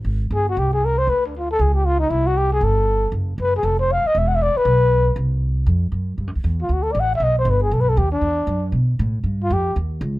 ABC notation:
X:1
M:4/4
L:1/8
Q:"Swing" 1/4=235
K:G
V:1 name="Trumpet"
z2 _A F G A _B c | B D =F A ^G =G ^E ^D | E F G _A =A4 | z2 B ^G A c =f _e |
(3e f e d B4- B | z8 | z3 =F (3^F A d f e | ^d c B _A (3=A B A G =D- |
D4 z4 | z ^E G2 z4 |]
V:2 name="Upright bass" clef=bass
_A,,,2 G,,,2 C,,4 | D,,4 ^C,,4 | C,,4 G,,,4 | F,,,2 F,,,2 =F,,,3 z |
E,,,3 z B,,,4 | C,,4 =F,,2 ^F,,2 | (3G,, F,, D,, E,,2 D,,2 A,,,2 | B,,,2 G,,,2 B,,,2 ^D,,2 |
E,,2 F,,2 B,,2 A,,2 | G,,2 ^E,,2 ^D,,2 ^C,,2 |]